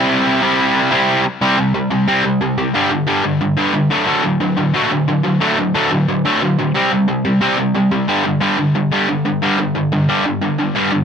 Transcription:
Already playing: C3 G3 C4 E4
0.41 C3 G3 C4 E4
0.91 C3 G3 C4 E4
1.41 C3 G3 C4
1.58 C3 G3
1.74 C3 G3
1.91 C3 G3
2.08 C3 G3 C4
2.24 C3 G3
2.41 C3 G3
2.58 C3 G3
2.74 G2 D3 G3
2.91 G2 D3
3.07 G2 D3 G3
3.24 G2 D3
3.41 G2 D3
3.57 G2 D3 G3
3.74 G2 D3
3.90 D3 F#3 A3
4.06 D3 F#3 A3
4.23 D3 F#3
4.40 D3 F#3
4.57 D3 F#3
4.74 D3 F#3 A3
4.91 D3 F#3
5.08 D3 F#3
5.23 D3 F#3
5.40 D3 F#3 A3
5.58 D3 F#3
5.74 D3 F#3 A3
5.91 D3 F#3
6.09 D3 F#3
6.25 D3 F#3 A3
6.42 D3 F#3
6.59 D3 F#3
6.75 C3 G3 C4
6.91 C3 G3
7.08 C3 G3
7.25 C3 G3
7.41 C3 G3 C4
7.58 C3 G3
7.75 C3 G3
7.92 C3 G3
8.08 G2 D3 G3
8.25 G2 D3
8.40 G2 D3 G3
8.58 G2 D3
8.75 G2 D3
8.92 G2 D3 G3
9.08 G2 D3
9.25 G2 D3
9.42 G2 D3 G3
9.58 G2 D3
9.75 G2 D3
9.92 G2 D3
10.09 G2 D3 G3
10.25 G2 D3
10.42 G2 D3
10.59 G2 D3
10.75 G2 D3 G3
10.92 G2 D3

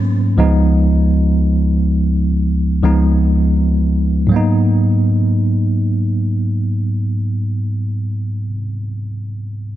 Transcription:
Already playing: G#2 F#3 A#3 B3 C#4
0.37 C#2 F3 G#3 B3 D#4
2.83 C#2 F3 G#3 B3 D#4
4.27 G#2 F#3
4.32 A#3 B3
4.36 D#4

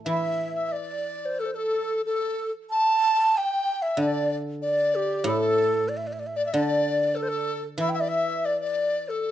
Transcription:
Already playing: A2 A3
0.05 E3 E5
0.09 E5
0.55 E5
0.66 E5
0.72 D5
0.77 D5
1.25 C5
1.39 A4
1.46 C5
1.54 A4
2.05 A4
2.70 A5
3.28 A5
3.36 G5
3.82 E5
3.97 D3 D5
4.02 D5
4.62 D5
4.95 G4
5.24 A2 A4
5.29 A4
5.88 D5
5.97 E5
6.07 D5
6.13 E5
6.19 D5
6.26 E5
6.36 D5
6.46 E5
6.53 D3 D5
7.15 A4
7.22 C5
7.29 A4
7.78 E3 E5
7.89 G5
7.94 E5
8.01 D5
8.09 E5
8.45 D5
8.61 D5
9.08 A4

